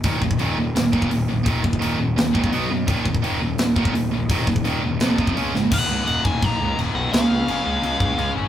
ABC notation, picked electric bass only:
X:1
M:4/4
L:1/8
Q:1/4=170
K:Ebm
V:1 name="Picked electric bass" clef=bass
E,,, E,,, E,,, E,,, E,,, E,,, E,,, B,,, | E,,, E,,, E,,, E,,, E,,, D,, =B,,, ^F,, | E,,, E,,, E,,, E,,, E,,, E,,, E,,, B,,, | E,,, E,,, E,,, _F,,, =F,,, =C,, D,, A,,, |
E,,, D,, E,,, E,,, B,,, D,, E,,, C,, | D,, D,, G,,, D,, D,, D,, D,, A,,, |]